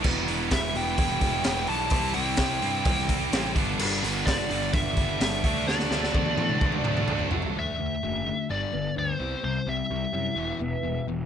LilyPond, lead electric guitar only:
\new Staff \with { instrumentName = "Lead electric guitar" } { \time 4/4 \key d \mixolydian \tempo 4 = 128 r4 e''8 g''4. g''8 a''8~ | a''8 g''2. r8 | r4 d''4 e''4 e''4 | d''2.~ d''8 r8 |
e''2 d''4 c''4 | c''8 e''2. r8 | }